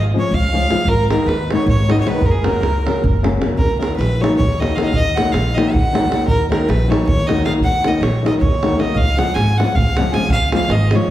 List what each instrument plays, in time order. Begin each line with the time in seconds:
Already playing: upright bass G#1
0.14 nylon-string guitar F3 G#3 C#4 F4, accordion C#5
0.19 fiddle C#5
0.31 upright bass C#2, fiddle F5, davul low
0.36 accordion F5
0.45 davul high
0.53 nylon-string guitar F3 G#3 C#4 F4
0.63 davul high
0.70 nylon-string guitar F3 G#3 C#4 F4, davul high
0.79 davul high
0.85 upright bass G#1, fiddle A#4, accordion A#4, davul low
1.10 nylon-string guitar D#3 G#3 B3 D#4, fiddle A#4, accordion A#4, davul high
1.21 davul high
1.26 upright bass D#2, fiddle B4, davul high
1.31 accordion B4
1.50 nylon-string guitar D#3 G#3 B3 D#4, fiddle C#5, accordion C#5, davul high
1.66 upright bass G#1, fiddle C#5, davul low
1.72 accordion C#5
1.79 davul high
1.88 nylon-string guitar D#3 G#3 B3 D#4, fiddle D#5, davul high
1.92 accordion D#5
1.99 accordion C#5, fiddle C#5, davul high
2.07 nylon-string guitar D#3 G#3 B3 D#4, fiddle B4, accordion B4, davul high
2.15 davul high
2.21 upright bass F#1, davul low
2.26 fiddle A#4, accordion A#4
2.30 accordion G#4, fiddle G#4, davul high
2.42 nylon-string guitar C#3 F#3 A#3, accordion A#4, fiddle A#4, davul high
2.46 nylon-string guitar C#4
2.54 davul high
2.61 upright bass C#2, davul high
2.75 davul high
2.86 nylon-string guitar C#3 F#3 A#3 C#4, davul high
3.04 upright bass F#1, davul low
3.23 nylon-string guitar C#3 F#3 A#3 C#4, davul high
3.33 davul high
3.41 nylon-string guitar C#3 F#3 A#3 C#4, davul high
3.50 davul high
3.57 upright bass D#2, fiddle A#4, davul low
3.79 nylon-string guitar D#3 F#3 A#3 D#4, fiddle A#4, davul high
3.92 fiddle B4, davul high
3.98 upright bass A#1, davul high
4.21 nylon-string guitar D#3 F#3 A#3 D#4, fiddle C#5, davul high
4.37 upright bass D#2, fiddle C#5, davul low
4.52 davul high
4.60 nylon-string guitar D#3 F#3 A#3 D#4, fiddle D#5, davul high
4.71 davul high
4.76 nylon-string guitar D#3 F#3 A#3 D#4, fiddle F5, davul high
4.82 fiddle D#5 F5
4.86 davul high
4.93 upright bass D#2, fiddle D#5, davul low
5.15 nylon-string guitar D#3 F#3 A#3 D#4, fiddle F#5, davul high
5.25 davul high
5.32 upright bass A#1, fiddle F5, davul high
5.55 nylon-string guitar D#3 F#3 A#3 D#4, fiddle D#5, davul high
5.73 upright bass D#2, fiddle F#5, davul low
5.86 davul high
5.93 nylon-string guitar D#3 F#3 A#3 D#4, davul high
6.04 davul high
6.09 nylon-string guitar D#3 F#3 A#3 D#4, davul high
6.21 davul high
6.27 upright bass D#2, fiddle A#4, davul low
6.50 nylon-string guitar D#3 F#3 A#3 D#4, fiddle A#4, davul high
6.69 upright bass A#1, fiddle B4, davul high
6.88 nylon-string guitar D#3 F#3 A#3 D#4, fiddle C#5, davul high
7.07 upright bass D#2, fiddle C#5, davul low
7.19 davul high
7.27 nylon-string guitar D#3 F#3 A#3 D#4, fiddle D#5, davul high
7.38 davul high
7.45 nylon-string guitar D#3 F#3 A#3 D#4, fiddle F5, davul high
7.54 davul high
7.60 upright bass D#2, fiddle F#5, davul low
7.74 davul high
7.84 nylon-string guitar D#3 F#3 A#3 D#4, fiddle D#5, davul high
7.94 davul high
8.01 upright bass A#1, fiddle C#5, davul high
8.16 davul high
8.23 nylon-string guitar D#3 F#3 A#3 D#4, accordion D#5, fiddle D#5, davul high
8.34 davul high
8.40 upright bass D#2, fiddle C#5, accordion C#5, davul low
8.54 davul high
8.63 nylon-string guitar D#3 F#3 A#3 D#4, davul high
8.71 davul high
8.77 nylon-string guitar D#3 F#3 A#3 D#4, fiddle D#5, accordion D#5, davul high
8.87 davul high
8.95 upright bass C#2, accordion F5, fiddle F5, davul low
9.17 nylon-string guitar F3 G#3 C#4 F4, accordion F#5, fiddle F#5, davul high
9.27 davul high
9.34 upright bass G#1, fiddle G#5, accordion G#5, davul high
9.57 nylon-string guitar F3 G#3 C#4 F4, accordion F#5, fiddle F#5, davul high
9.74 upright bass C#2, accordion F5, fiddle F5, davul low
9.87 davul high
9.95 nylon-string guitar F3 G#3, accordion F#5, fiddle F#5, davul high
9.99 nylon-string guitar C#4 F4
10.06 davul high
10.12 nylon-string guitar F3 G#3 C#4 F4, accordion G#5, fiddle G#5, davul high
10.23 davul high
10.29 upright bass C#2, accordion F5, fiddle F5, davul low
10.51 nylon-string guitar F3 G#3 C#4 F4, accordion F5, fiddle F5, davul high
10.62 davul high
10.69 upright bass G#1, accordion D#5, fiddle D#5, davul high
10.91 nylon-string guitar F3 G#3 C#4, accordion C#5, davul high
10.95 nylon-string guitar F4, fiddle C#5